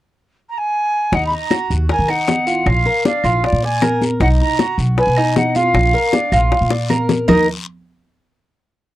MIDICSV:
0, 0, Header, 1, 5, 480
1, 0, Start_track
1, 0, Key_signature, -6, "minor"
1, 0, Tempo, 384123
1, 1412, Time_signature, 4, 2, 24, 8
1, 11184, End_track
2, 0, Start_track
2, 0, Title_t, "Flute"
2, 0, Program_c, 0, 73
2, 617, Note_on_c, 0, 82, 73
2, 720, Note_on_c, 0, 80, 101
2, 738, Note_off_c, 0, 82, 0
2, 1432, Note_on_c, 0, 78, 95
2, 1450, Note_off_c, 0, 80, 0
2, 1566, Note_off_c, 0, 78, 0
2, 1574, Note_on_c, 0, 83, 72
2, 1677, Note_on_c, 0, 82, 99
2, 1696, Note_off_c, 0, 83, 0
2, 2144, Note_off_c, 0, 82, 0
2, 2387, Note_on_c, 0, 80, 91
2, 2619, Note_on_c, 0, 78, 92
2, 2638, Note_off_c, 0, 80, 0
2, 3348, Note_on_c, 0, 77, 99
2, 3367, Note_off_c, 0, 78, 0
2, 3821, Note_off_c, 0, 77, 0
2, 3832, Note_on_c, 0, 77, 91
2, 4310, Note_on_c, 0, 74, 90
2, 4329, Note_off_c, 0, 77, 0
2, 4554, Note_on_c, 0, 80, 93
2, 4573, Note_off_c, 0, 74, 0
2, 5025, Note_off_c, 0, 80, 0
2, 5271, Note_on_c, 0, 78, 94
2, 5346, Note_off_c, 0, 78, 0
2, 5507, Note_on_c, 0, 82, 105
2, 5949, Note_off_c, 0, 82, 0
2, 6236, Note_on_c, 0, 80, 91
2, 6674, Note_off_c, 0, 80, 0
2, 6711, Note_on_c, 0, 78, 84
2, 6929, Note_off_c, 0, 78, 0
2, 6960, Note_on_c, 0, 77, 93
2, 8821, Note_off_c, 0, 77, 0
2, 9118, Note_on_c, 0, 75, 76
2, 9333, Note_off_c, 0, 75, 0
2, 11184, End_track
3, 0, Start_track
3, 0, Title_t, "Cuban tres"
3, 0, Program_c, 1, 25
3, 1409, Note_on_c, 1, 63, 76
3, 1876, Note_off_c, 1, 63, 0
3, 1886, Note_on_c, 1, 66, 63
3, 2354, Note_off_c, 1, 66, 0
3, 2367, Note_on_c, 1, 70, 66
3, 2602, Note_off_c, 1, 70, 0
3, 2604, Note_on_c, 1, 63, 78
3, 3073, Note_off_c, 1, 63, 0
3, 3084, Note_on_c, 1, 65, 66
3, 3554, Note_off_c, 1, 65, 0
3, 3571, Note_on_c, 1, 70, 65
3, 3805, Note_off_c, 1, 70, 0
3, 3816, Note_on_c, 1, 62, 75
3, 4048, Note_off_c, 1, 62, 0
3, 4053, Note_on_c, 1, 65, 74
3, 4519, Note_off_c, 1, 65, 0
3, 4537, Note_on_c, 1, 74, 69
3, 4769, Note_off_c, 1, 74, 0
3, 4781, Note_on_c, 1, 70, 63
3, 5244, Note_off_c, 1, 70, 0
3, 5264, Note_on_c, 1, 63, 76
3, 5726, Note_off_c, 1, 63, 0
3, 5744, Note_on_c, 1, 66, 69
3, 6207, Note_off_c, 1, 66, 0
3, 6226, Note_on_c, 1, 71, 64
3, 6455, Note_off_c, 1, 71, 0
3, 6466, Note_on_c, 1, 63, 80
3, 6928, Note_off_c, 1, 63, 0
3, 6941, Note_on_c, 1, 65, 70
3, 7406, Note_off_c, 1, 65, 0
3, 7422, Note_on_c, 1, 70, 71
3, 7654, Note_off_c, 1, 70, 0
3, 7663, Note_on_c, 1, 62, 68
3, 7895, Note_off_c, 1, 62, 0
3, 7902, Note_on_c, 1, 65, 69
3, 8367, Note_off_c, 1, 65, 0
3, 8380, Note_on_c, 1, 74, 71
3, 8613, Note_off_c, 1, 74, 0
3, 8618, Note_on_c, 1, 70, 62
3, 9085, Note_off_c, 1, 70, 0
3, 9096, Note_on_c, 1, 63, 89
3, 9101, Note_on_c, 1, 70, 78
3, 9107, Note_on_c, 1, 75, 94
3, 9321, Note_off_c, 1, 63, 0
3, 9324, Note_off_c, 1, 70, 0
3, 9327, Note_off_c, 1, 75, 0
3, 11184, End_track
4, 0, Start_track
4, 0, Title_t, "Upright bass"
4, 0, Program_c, 2, 32
4, 1403, Note_on_c, 2, 39, 93
4, 1635, Note_off_c, 2, 39, 0
4, 2128, Note_on_c, 2, 39, 79
4, 2358, Note_off_c, 2, 39, 0
4, 2484, Note_on_c, 2, 51, 74
4, 3286, Note_off_c, 2, 51, 0
4, 3324, Note_on_c, 2, 34, 94
4, 3556, Note_off_c, 2, 34, 0
4, 4046, Note_on_c, 2, 34, 80
4, 4278, Note_off_c, 2, 34, 0
4, 4406, Note_on_c, 2, 46, 77
4, 5209, Note_off_c, 2, 46, 0
4, 5250, Note_on_c, 2, 35, 91
4, 5481, Note_off_c, 2, 35, 0
4, 5970, Note_on_c, 2, 35, 81
4, 6202, Note_off_c, 2, 35, 0
4, 6334, Note_on_c, 2, 47, 77
4, 7135, Note_off_c, 2, 47, 0
4, 7171, Note_on_c, 2, 34, 93
4, 7403, Note_off_c, 2, 34, 0
4, 7896, Note_on_c, 2, 34, 82
4, 8126, Note_off_c, 2, 34, 0
4, 8258, Note_on_c, 2, 46, 71
4, 9057, Note_off_c, 2, 46, 0
4, 9100, Note_on_c, 2, 39, 84
4, 9323, Note_off_c, 2, 39, 0
4, 11184, End_track
5, 0, Start_track
5, 0, Title_t, "Drums"
5, 1406, Note_on_c, 9, 63, 30
5, 1407, Note_on_c, 9, 74, 60
5, 1409, Note_on_c, 9, 60, 66
5, 1531, Note_off_c, 9, 63, 0
5, 1532, Note_off_c, 9, 74, 0
5, 1534, Note_off_c, 9, 60, 0
5, 1641, Note_on_c, 9, 63, 32
5, 1766, Note_off_c, 9, 63, 0
5, 1882, Note_on_c, 9, 63, 57
5, 1884, Note_on_c, 9, 73, 64
5, 1887, Note_on_c, 9, 75, 66
5, 1889, Note_on_c, 9, 60, 58
5, 2007, Note_off_c, 9, 63, 0
5, 2009, Note_off_c, 9, 73, 0
5, 2011, Note_off_c, 9, 75, 0
5, 2014, Note_off_c, 9, 60, 0
5, 2128, Note_on_c, 9, 63, 30
5, 2135, Note_on_c, 9, 73, 66
5, 2253, Note_off_c, 9, 63, 0
5, 2260, Note_off_c, 9, 73, 0
5, 2364, Note_on_c, 9, 63, 32
5, 2366, Note_on_c, 9, 60, 67
5, 2370, Note_on_c, 9, 74, 62
5, 2489, Note_off_c, 9, 63, 0
5, 2491, Note_off_c, 9, 60, 0
5, 2495, Note_off_c, 9, 74, 0
5, 2604, Note_on_c, 9, 75, 60
5, 2616, Note_on_c, 9, 63, 31
5, 2729, Note_off_c, 9, 75, 0
5, 2741, Note_off_c, 9, 63, 0
5, 2842, Note_on_c, 9, 73, 68
5, 2849, Note_on_c, 9, 60, 65
5, 2849, Note_on_c, 9, 61, 77
5, 2849, Note_on_c, 9, 63, 77
5, 2967, Note_off_c, 9, 73, 0
5, 2974, Note_off_c, 9, 60, 0
5, 2974, Note_off_c, 9, 61, 0
5, 2974, Note_off_c, 9, 63, 0
5, 3086, Note_on_c, 9, 73, 69
5, 3211, Note_off_c, 9, 73, 0
5, 3327, Note_on_c, 9, 63, 32
5, 3330, Note_on_c, 9, 75, 59
5, 3331, Note_on_c, 9, 60, 62
5, 3332, Note_on_c, 9, 74, 60
5, 3452, Note_off_c, 9, 63, 0
5, 3455, Note_off_c, 9, 75, 0
5, 3456, Note_off_c, 9, 60, 0
5, 3457, Note_off_c, 9, 74, 0
5, 3568, Note_on_c, 9, 63, 34
5, 3571, Note_on_c, 9, 60, 33
5, 3693, Note_off_c, 9, 63, 0
5, 3696, Note_off_c, 9, 60, 0
5, 3814, Note_on_c, 9, 63, 84
5, 3814, Note_on_c, 9, 73, 63
5, 3817, Note_on_c, 9, 60, 58
5, 3939, Note_off_c, 9, 63, 0
5, 3939, Note_off_c, 9, 73, 0
5, 3942, Note_off_c, 9, 60, 0
5, 4045, Note_on_c, 9, 75, 62
5, 4053, Note_on_c, 9, 73, 62
5, 4057, Note_on_c, 9, 60, 32
5, 4170, Note_off_c, 9, 75, 0
5, 4178, Note_off_c, 9, 73, 0
5, 4182, Note_off_c, 9, 60, 0
5, 4297, Note_on_c, 9, 74, 64
5, 4299, Note_on_c, 9, 60, 67
5, 4304, Note_on_c, 9, 63, 31
5, 4422, Note_off_c, 9, 74, 0
5, 4424, Note_off_c, 9, 60, 0
5, 4429, Note_off_c, 9, 63, 0
5, 4543, Note_on_c, 9, 63, 32
5, 4668, Note_off_c, 9, 63, 0
5, 4773, Note_on_c, 9, 60, 63
5, 4773, Note_on_c, 9, 61, 77
5, 4773, Note_on_c, 9, 63, 80
5, 4773, Note_on_c, 9, 75, 62
5, 4780, Note_on_c, 9, 73, 73
5, 4898, Note_off_c, 9, 60, 0
5, 4898, Note_off_c, 9, 61, 0
5, 4898, Note_off_c, 9, 63, 0
5, 4898, Note_off_c, 9, 75, 0
5, 4905, Note_off_c, 9, 73, 0
5, 5017, Note_on_c, 9, 63, 80
5, 5021, Note_on_c, 9, 60, 35
5, 5028, Note_on_c, 9, 73, 68
5, 5142, Note_off_c, 9, 63, 0
5, 5145, Note_off_c, 9, 60, 0
5, 5153, Note_off_c, 9, 73, 0
5, 5256, Note_on_c, 9, 60, 64
5, 5258, Note_on_c, 9, 63, 30
5, 5260, Note_on_c, 9, 74, 64
5, 5381, Note_off_c, 9, 60, 0
5, 5383, Note_off_c, 9, 63, 0
5, 5385, Note_off_c, 9, 74, 0
5, 5500, Note_on_c, 9, 63, 34
5, 5625, Note_off_c, 9, 63, 0
5, 5737, Note_on_c, 9, 60, 58
5, 5739, Note_on_c, 9, 75, 63
5, 5742, Note_on_c, 9, 63, 54
5, 5743, Note_on_c, 9, 73, 61
5, 5862, Note_off_c, 9, 60, 0
5, 5864, Note_off_c, 9, 75, 0
5, 5866, Note_off_c, 9, 63, 0
5, 5868, Note_off_c, 9, 73, 0
5, 5982, Note_on_c, 9, 73, 66
5, 5985, Note_on_c, 9, 63, 32
5, 6107, Note_off_c, 9, 73, 0
5, 6110, Note_off_c, 9, 63, 0
5, 6220, Note_on_c, 9, 60, 68
5, 6220, Note_on_c, 9, 63, 32
5, 6221, Note_on_c, 9, 74, 65
5, 6345, Note_off_c, 9, 60, 0
5, 6345, Note_off_c, 9, 63, 0
5, 6346, Note_off_c, 9, 74, 0
5, 6455, Note_on_c, 9, 75, 60
5, 6464, Note_on_c, 9, 63, 33
5, 6580, Note_off_c, 9, 75, 0
5, 6589, Note_off_c, 9, 63, 0
5, 6699, Note_on_c, 9, 73, 70
5, 6700, Note_on_c, 9, 60, 60
5, 6700, Note_on_c, 9, 61, 78
5, 6705, Note_on_c, 9, 63, 81
5, 6824, Note_off_c, 9, 73, 0
5, 6825, Note_off_c, 9, 60, 0
5, 6825, Note_off_c, 9, 61, 0
5, 6830, Note_off_c, 9, 63, 0
5, 6935, Note_on_c, 9, 73, 70
5, 6948, Note_on_c, 9, 63, 67
5, 7060, Note_off_c, 9, 73, 0
5, 7072, Note_off_c, 9, 63, 0
5, 7178, Note_on_c, 9, 75, 61
5, 7180, Note_on_c, 9, 60, 68
5, 7181, Note_on_c, 9, 74, 64
5, 7184, Note_on_c, 9, 63, 31
5, 7303, Note_off_c, 9, 75, 0
5, 7305, Note_off_c, 9, 60, 0
5, 7306, Note_off_c, 9, 74, 0
5, 7309, Note_off_c, 9, 63, 0
5, 7423, Note_on_c, 9, 60, 35
5, 7424, Note_on_c, 9, 63, 33
5, 7548, Note_off_c, 9, 60, 0
5, 7549, Note_off_c, 9, 63, 0
5, 7658, Note_on_c, 9, 60, 57
5, 7665, Note_on_c, 9, 63, 86
5, 7665, Note_on_c, 9, 73, 68
5, 7783, Note_off_c, 9, 60, 0
5, 7790, Note_off_c, 9, 63, 0
5, 7790, Note_off_c, 9, 73, 0
5, 7898, Note_on_c, 9, 60, 33
5, 7902, Note_on_c, 9, 73, 64
5, 7902, Note_on_c, 9, 75, 60
5, 8023, Note_off_c, 9, 60, 0
5, 8027, Note_off_c, 9, 73, 0
5, 8027, Note_off_c, 9, 75, 0
5, 8146, Note_on_c, 9, 60, 67
5, 8147, Note_on_c, 9, 63, 32
5, 8151, Note_on_c, 9, 74, 65
5, 8270, Note_off_c, 9, 60, 0
5, 8272, Note_off_c, 9, 63, 0
5, 8276, Note_off_c, 9, 74, 0
5, 8377, Note_on_c, 9, 60, 71
5, 8384, Note_on_c, 9, 63, 33
5, 8502, Note_off_c, 9, 60, 0
5, 8509, Note_off_c, 9, 63, 0
5, 8620, Note_on_c, 9, 61, 68
5, 8620, Note_on_c, 9, 63, 77
5, 8625, Note_on_c, 9, 75, 62
5, 8637, Note_on_c, 9, 73, 74
5, 8745, Note_off_c, 9, 61, 0
5, 8745, Note_off_c, 9, 63, 0
5, 8750, Note_off_c, 9, 75, 0
5, 8762, Note_off_c, 9, 73, 0
5, 8860, Note_on_c, 9, 61, 102
5, 8866, Note_on_c, 9, 63, 80
5, 8868, Note_on_c, 9, 73, 71
5, 8985, Note_off_c, 9, 61, 0
5, 8991, Note_off_c, 9, 63, 0
5, 8993, Note_off_c, 9, 73, 0
5, 9099, Note_on_c, 9, 61, 94
5, 9104, Note_on_c, 9, 74, 85
5, 9106, Note_on_c, 9, 64, 87
5, 9107, Note_on_c, 9, 75, 91
5, 9224, Note_off_c, 9, 61, 0
5, 9229, Note_off_c, 9, 74, 0
5, 9231, Note_off_c, 9, 64, 0
5, 9232, Note_off_c, 9, 75, 0
5, 11184, End_track
0, 0, End_of_file